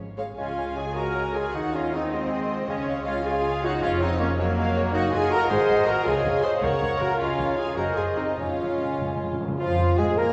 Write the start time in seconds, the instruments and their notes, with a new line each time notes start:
Already playing: double bass section G#1
0.17 viola section G#3 G#4, violin section C#5 F5
0.35 double bass section C#2, cello section C#3, bassoon G#3, cor anglais C#4, french horn section C#4, trumpet section F4, viola section F4, clarinet C#5, violin section F5 G#5, flute section G#5
0.57 bassoon G#3, clarinet C#5, flute section G#5
0.76 bassoon G#3, cor anglais F4, french horn section F4, viola section G#4, trumpet section G#4, clarinet C#5, violin section G#5, flute section G#5
0.95 bassoon G#3, cor anglais F#4, french horn section F#4, viola section A#4, trumpet section A#4, clarinet C#5, flute section G#5, violin section A#5
1.15 bassoon G#3, clarinet C#5, flute section G#5
1.34 bassoon G#3, french horn section F4, cor anglais F4, viola section G#4, trumpet section G#4, clarinet C#5, flute section G#5, violin section G#5
1.52 double bass section D#2, cello section D#3, bassoon G#3, french horn section D#4, cor anglais D#4, viola section F#4, trumpet section F#4, violin section D#5 F#5, clarinet D#5, flute section F#5
1.73 bassoon G#3, french horn section C#4, cor anglais C#4, trumpet section F4, viola section F4, clarinet D#5, violin section F5, flute section F#5
1.92 bassoon G#3, french horn section C4, cor anglais C4, viola section D#4, trumpet section D#4, violin section D#5, clarinet D#5, flute section F#5
2.11 french horn section G#3, bassoon G#3, cor anglais G#3, viola section C4, trumpet section C4, violin section C5, clarinet D#5, flute section F#5
2.30 bassoon G#3, clarinet D#5, flute section F#5
2.49 bassoon G#3, clarinet D#5, flute section F#5
2.68 double bass section C#2, cello section C#3, french horn section G#3, bassoon G#3, cor anglais G#3, viola section C#4, trumpet section C#4, violin section C#5, clarinet C#5, flute section F5
2.87 bassoon G#3, clarinet C#5, flute section F5
3.06 bassoon G#3, cor anglais C#4, french horn section C#4, viola section F4, trumpet section F4, clarinet C#5, flute section F5, violin section F5
3.25 bassoon G#3, cor anglais F4, french horn section F4, viola section G#4, trumpet section G#4, clarinet C#5, flute section F5, violin section F5 G#5
3.43 bassoon G#3, clarinet C#5, flute section F5
3.63 bassoon G#3, cor anglais D#4, french horn section D#4, viola section F#4, trumpet section F#4, clarinet C#5, flute section F5, violin section F#5
3.82 double bass section F1, cello section F2, bassoon G#3, cor anglais C#4, french horn section C#4, viola section F4, trumpet section F4, violin section C#5 F5, clarinet C#5, flute section F5
4.01 bassoon G#3, cor anglais C4, french horn section C4, viola section D#4, trumpet section D#4, clarinet C#5, violin section D#5, flute section F5
4.19 bassoon G#3, cor anglais A#3, french horn section A#3, viola section C#4, trumpet section C#4, violin section C#5, clarinet C#5, flute section F5
4.37 french horn section F#3, cor anglais F#3, bassoon G#3, trumpet section A#3, viola section A#3, violin section A#4 C#5, clarinet C#5, flute section F5
4.57 bassoon G#3, clarinet C#5, violin section F5, flute section F5
4.76 bassoon G#3, violin section C#5, clarinet C#5, flute section F5
4.93 double bass section F#1, cello section F#2, bassoon A#3, french horn section D#4, cor anglais D#4, trumpet section F#4, viola section F#4, violin section D#5 F#5, clarinet D#5, flute section F#5
5.12 double bass section F#1, cello section F#2, cor anglais F4, french horn section F4, trumpet section G#4, viola section G#4, violin section G#5
5.30 cor anglais F#4, french horn section F#4, trumpet section A#4, viola section A#4, violin section A#5
5.49 double bass section G#1, cello section G#2, bassoon G#3, cor anglais G#4, french horn section G#4, trumpet section C5, viola section C5, violin section C6
5.69 double bass section G#1, cello section G#2
5.86 double bass section G#1, cello section G#2, cor anglais F#4, french horn section F#4, viola section A#4, trumpet section A#4, violin section A#5
6.03 double bass section C#2, cello section C#3, french horn section F4, cor anglais F4, viola section G#4, trumpet section G#4, clarinet C#5, flute section F5, violin section G#5
6.24 double bass section C#2, cello section C#3
6.42 french horn section G#4, cor anglais G#4, viola section C5, trumpet section C5, violin section C6
6.60 double bass section C#2, cello section C#3, bassoon A#3, french horn section A#4, cor anglais A#4, viola section C#5, trumpet section C#5, violin section F#5 C#6, flute section F#5
6.81 double bass section C#2, cello section C#3
6.99 double bass section C#2, cello section C#3, french horn section F#4, cor anglais F#4, viola section A#4, trumpet section A#4, violin section A#5
7.18 double bass section C#2, cello section C#3, bassoon G#3, cor anglais C#4, french horn section C#4, viola section F4, trumpet section F4, clarinet C#5, violin section F5, flute section G#5
7.38 double bass section C#2, cello section C#3
7.56 cor anglais F4, french horn section F4, viola section G#4, trumpet section G#4, violin section G#5
7.75 double bass section F#1, cello section F#2, bassoon G#3, cor anglais F#4, french horn section F#4, viola section A#4, trumpet section A#4, clarinet C5, violin section D#5 A#5, flute section G#5
7.95 double bass section F#1, cello section F#2, french horn section F4, cor anglais F4, viola section G#4, trumpet section G#4, violin section G#5
8.16 double bass section F#1, cello section F#2, french horn section C4, cor anglais C4, viola section D#4, trumpet section D#4, violin section D#5
8.37 double bass section F1, cello section F2, timpani C#3, bassoon G#3, cor anglais C#4, french horn section C#4, viola section F4, trumpet section F4, clarinet C#5, violin section C#5 F5, flute section G#5
8.46 timpani C#3
8.53 timpani C#3
8.59 double bass section F1, cello section F2, timpani C#3
8.69 timpani C#3
8.77 timpani C#3
8.85 timpani C#3
8.93 timpani C#3
8.99 double bass section F1, cello section F2, timpani C#3
9.09 timpani C#3
9.16 double bass section F1, cello section F2, timpani C#3
9.24 timpani C#3
9.33 timpani C#3
9.40 double bass section F1, cello section F2, timpani C#3
9.48 timpani C#3
9.58 double bass section F2, viola section F3, bassoon F3, cello section F3, french horn section F4, violin section F4 F5, cor anglais F4, clarinet F4, flute section F5
9.98 double bass section G#2, bassoon G#3, viola section G#3, cello section G#3, cor anglais G#4, violin section G#4 G#5, french horn section G#4, clarinet G#4, flute section G#5
10.17 double bass section A#2, cello section A#3, viola section A#3, bassoon A#3, french horn section A#4, cor anglais A#4, violin section A#4 A#5, clarinet A#4, flute section A#5